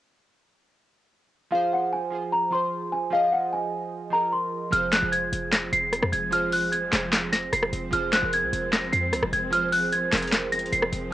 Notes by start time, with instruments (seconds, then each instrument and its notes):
1.51 synth keys F3 F4 G#4, celesta F5
1.55 synth keys C5
1.73 celesta F#5
1.93 celesta G#5
2.11 synth keys F3 F4 G#4
2.15 synth keys C5
2.32 celesta A#5
2.51 synth keys F3 F4 G#4, celesta C6
2.55 synth keys C5
2.92 celesta G#5
3.10 synth keys F3 F4 G#4, celesta F5
3.15 synth keys D#5
3.32 celesta F#5
3.53 celesta G#5
4.10 synth keys F3 F4 G#4, celesta A#5
4.14 synth keys A#4
4.33 celesta C6
4.70 808-style bass F1, synth keys F3 F4 G#4, string section F3 G#3 C4, celesta F6, closed hi-hat
4.75 synth keys C5
4.92 celesta F#6, snare, clap, closed hi-hat
5.00 808-style bass F1, synth keys F3 F4 G#4
5.05 synth keys C5
5.12 celesta G#6, closed hi-hat
5.33 808-style bass F1, closed hi-hat
5.52 celesta A#6, snare, clap, closed hi-hat
5.72 808-style bass F1, celesta C7, closed hi-hat
5.93 cross-stick, closed hi-hat
6.03 808-style bass F2, cross-stick
6.12 808-style bass F1, celesta G#6, closed hi-hat
6.31 synth keys F3 F4 G#4, celesta F6, closed hi-hat
6.35 synth keys C5
6.52 celesta F#6, open hi-hat
6.72 celesta G#6, closed hi-hat
6.91 808-style bass F1, synth keys F3 F4 G#4, snare, clap, closed hi-hat
6.95 synth keys C5
7.13 snare, clap, closed hi-hat
7.32 celesta A#6, snare, closed hi-hat
7.53 808-style bass F1, celesta C7, cross-stick, closed hi-hat
7.63 cross-stick
7.73 808-style bass F1, closed hi-hat
7.91 808-style bass F1, synth keys F3 F4 G#4, string section F3 G#3, celesta F6, closed hi-hat
7.95 synth keys C5
8.12 celesta F#6, snare, clap, closed hi-hat
8.21 808-style bass F1, synth keys F3 F4 G#4
8.25 synth keys A#4
8.33 celesta G#6, closed hi-hat
8.43 808-style bass C2
8.53 808-style bass F1, closed hi-hat
8.73 celesta A#6, snare, clap, closed hi-hat
8.92 808-style bass F2, celesta C7, closed hi-hat
9.13 808-style bass C2, cross-stick, closed hi-hat
9.23 808-style bass F1, cross-stick
9.33 808-style bass F1, celesta G#6, closed hi-hat
9.50 synth keys F3 F4 G#4, celesta F6, closed hi-hat
9.55 synth keys C5
9.72 celesta F#6, open hi-hat
9.93 celesta G#6, closed hi-hat
10.11 808-style bass F1, synth keys F3 F4 G#4, snare, clap, closed hi-hat
10.15 synth keys A#4, closed hi-hat
10.23 closed hi-hat
10.28 closed hi-hat
10.33 snare, clap, closed hi-hat
10.52 celesta A#6, closed hi-hat
10.59 closed hi-hat
10.66 closed hi-hat
10.73 808-style bass F1, celesta C7, closed hi-hat
10.83 cross-stick
10.93 808-style bass F1, closed hi-hat